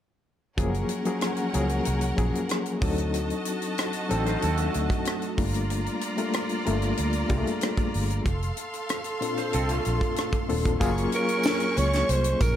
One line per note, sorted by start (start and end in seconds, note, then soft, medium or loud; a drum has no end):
0.57 0.83 F#1 medium
0.57 0.88 F3 medium
0.57 0.88 F#3 loud
0.57 0.88 A#3 medium
0.57 0.88 C#4 medium
0.57 2.78 C#4 medium
0.57 0.89 G#4 loud
0.57 2.78 A#4 medium
0.57 2.78 F#5 medium
0.57 kick medium
0.57 closed hi-hat medium
0.74 closed hi-hat soft
0.89 closed hi-hat medium
1.05 1.36 F3 medium
1.05 1.36 F#3 medium
1.05 1.36 A#3 medium
1.05 1.36 C#4 medium
1.05 1.37 G#4 medium
1.05 closed hi-hat soft
1.21 cross-stick medium
1.21 closed hi-hat medium
1.36 closed hi-hat soft
1.53 1.79 C#2 medium
1.53 1.95 F3 medium
1.53 1.94 F#3 medium
1.53 1.94 A#3 medium
1.53 1.94 C#4 medium
1.53 1.95 G#4 medium
1.53 closed hi-hat medium
1.69 closed hi-hat soft
1.85 2.11 C2 medium
1.85 closed hi-hat medium
2.01 closed hi-hat soft
2.17 2.31 A#1 medium
2.17 2.82 F3 medium
2.17 2.81 F#3 medium
2.17 2.82 A#3 medium
2.17 2.82 C#4 medium
2.17 2.82 G#4 medium
2.17 kick medium
2.17 closed hi-hat medium
2.35 closed hi-hat soft
2.49 cross-stick medium
2.49 closed hi-hat medium
2.66 closed hi-hat soft
2.82 3.31 D2 medium
2.82 3.84 F#3 medium
2.82 3.84 C4 medium
2.82 3.85 D4 medium
2.82 3.85 D#4 medium
2.82 5.34 F#4 medium
2.82 3.85 A4 medium
2.82 5.34 D#5 medium
2.82 5.34 A5 medium
2.82 kick medium
2.82 open hi-hat medium
2.98 closed hi-hat medium
3.14 closed hi-hat medium
3.30 closed hi-hat soft
3.45 closed hi-hat medium
3.62 closed hi-hat soft
3.78 cross-stick medium
3.78 closed hi-hat medium
3.93 closed hi-hat soft
4.09 4.35 A1 medium
4.09 4.90 F#3 medium
4.09 4.90 C4 medium
4.09 4.26 C4 soft
4.09 4.90 D4 medium
4.09 4.91 D#4 medium
4.09 4.26 A4 medium
4.09 4.91 A4 medium
4.09 closed hi-hat medium
4.26 4.42 D#4 medium
4.26 4.41 C5 medium
4.26 cross-stick soft
4.26 closed hi-hat soft
4.42 4.67 D#2 medium
4.42 4.58 C4 medium
4.42 4.57 A4 medium
4.42 closed hi-hat medium
4.57 5.34 A3 soft
4.57 5.34 F#4 medium
4.57 closed hi-hat soft
4.74 4.87 D2 medium
4.74 closed hi-hat medium
4.90 kick medium
4.90 closed hi-hat soft
5.05 cross-stick medium
5.05 closed hi-hat medium
5.22 closed hi-hat soft
5.37 5.87 G1 medium
5.37 6.02 G3 medium
5.37 6.02 A3 medium
5.37 6.02 A#3 medium
5.37 6.02 D4 medium
5.37 6.02 F4 medium
5.37 8.22 F4 medium
5.37 8.22 D5 medium
5.37 8.22 A#5 medium
5.37 kick medium
5.37 open hi-hat medium
5.54 closed hi-hat medium
5.70 closed hi-hat medium
5.86 closed hi-hat soft
6.01 closed hi-hat medium
6.17 6.47 G3 medium
6.17 6.48 A3 medium
6.17 6.48 A#3 medium
6.17 6.48 D4 medium
6.17 6.48 F4 medium
6.17 closed hi-hat soft
6.33 cross-stick loud
6.33 closed hi-hat medium
6.49 closed hi-hat soft
6.65 6.91 G1 medium
6.65 7.06 G3 medium
6.65 7.06 A3 medium
6.65 7.06 A#3 medium
6.65 7.06 D4 medium
6.65 7.06 F4 medium
6.65 closed hi-hat medium
6.82 cross-stick soft
6.82 closed hi-hat soft
6.97 7.23 D2 medium
6.97 closed hi-hat medium
7.13 closed hi-hat soft
7.29 7.42 C2 medium
7.29 8.10 G3 medium
7.29 8.10 A#3 medium
7.29 8.10 D4 medium
7.29 8.10 F4 medium
7.29 7.37 G#4 medium
7.29 kick medium
7.29 closed hi-hat medium
7.37 8.14 A3 medium
7.47 closed hi-hat soft
7.61 cross-stick medium
7.61 closed hi-hat medium
7.77 kick medium
7.77 closed hi-hat soft
7.94 8.19 G1 medium
7.94 open hi-hat medium
8.10 closed hi-hat soft
8.25 8.50 F1 medium
8.25 10.77 A4 medium
8.25 10.77 F5 medium
8.25 10.77 C6 medium
8.25 kick medium
8.25 closed hi-hat medium
8.42 closed hi-hat soft
8.57 closed hi-hat medium
8.73 closed hi-hat soft
8.89 cross-stick medium
8.89 closed hi-hat medium
9.04 closed hi-hat soft
9.21 10.01 A#2 medium
9.21 10.01 C4 medium
9.21 10.02 D4 medium
9.21 10.02 F4 medium
9.21 10.02 A4 medium
9.21 closed hi-hat medium
9.37 9.53 C5 medium
9.37 cross-stick soft
9.37 closed hi-hat soft
9.53 9.78 C2 medium
9.53 9.69 C4 medium
9.53 9.68 A4 medium
9.53 closed hi-hat medium
9.69 10.61 A3 soft
9.69 10.61 F4 medium
9.69 closed hi-hat soft
9.85 9.98 A#1 medium
9.85 closed hi-hat medium
10.01 kick medium
10.01 closed hi-hat soft
10.16 cross-stick medium
10.16 closed hi-hat medium
10.33 kick medium
10.33 closed hi-hat soft
10.48 10.74 D#1 medium
10.48 10.69 A#3 medium
10.48 10.69 C4 medium
10.48 10.69 D4 medium
10.48 10.69 F4 medium
10.48 10.69 A4 medium
10.48 open hi-hat medium
10.65 kick medium
10.65 closed hi-hat medium
10.80 11.06 F#1 loud
10.80 11.61 F#3 loud
10.80 11.61 A#3 loud
10.80 11.61 C#4 loud
10.80 12.56 C#4 loud
10.80 11.61 F4 loud
10.80 11.62 G#4 loud
10.80 12.56 C#6 loud
10.80 kick loud
10.80 closed hi-hat medium
10.80 tambourine medium
10.98 closed hi-hat soft
11.12 11.80 A#4 loud
11.12 closed hi-hat medium
11.12 tambourine soft
11.29 closed hi-hat soft
11.43 snare loud
11.43 tambourine medium
11.60 closed hi-hat medium
11.77 12.02 C#2 medium
11.77 12.12 C#5 loud
11.77 closed hi-hat medium
11.77 tambourine soft
11.93 snare soft
11.93 closed hi-hat soft
12.09 12.33 C2 medium
12.09 12.44 C5 loud
12.09 closed hi-hat medium
12.24 closed hi-hat medium
12.41 12.53 A#1 medium
12.41 12.56 A#4 loud
12.41 kick medium
12.41 closed hi-hat medium
12.41 tambourine medium